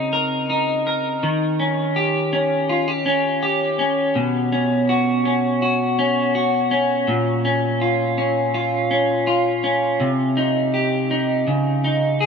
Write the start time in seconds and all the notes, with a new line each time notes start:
Already playing: C#3 C4 D#4 A#4
0.13 A#4
0.50 D#4
0.87 A#4
1.23 D#3
1.60 C#4
1.96 G4
2.33 C#4
2.69 F4
2.88 G4
3.06 C#4
3.43 G4
3.79 C#4
4.15 B2
4.52 C#4
4.89 F#4
5.25 C#4
5.62 F#4
5.99 C#4
6.35 F#4
6.71 C#4
7.08 A#2
7.45 C#4
7.81 F4
8.18 C#4
8.54 F4
8.91 C#4
9.27 F4
9.64 C#4
10.00 C3
10.37 D#4
10.74 G4
11.11 D#4
11.47 C#3
11.84 D#4
12.20 G#4